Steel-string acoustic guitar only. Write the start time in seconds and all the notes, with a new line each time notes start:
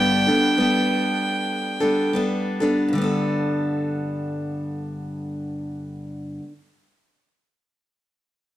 Already playing: G2 D3 G3 B3 D4 A4
0.27 G3 B3 D4 A4
0.57 G3 B3 D4 A4
1.80 G3 B3 D4 A4
2.13 G3 B3 D4 A4
2.60 G3 B3 D4 A4
2.88 G2
2.93 D3 G3
2.98 B3 D4
3.04 A4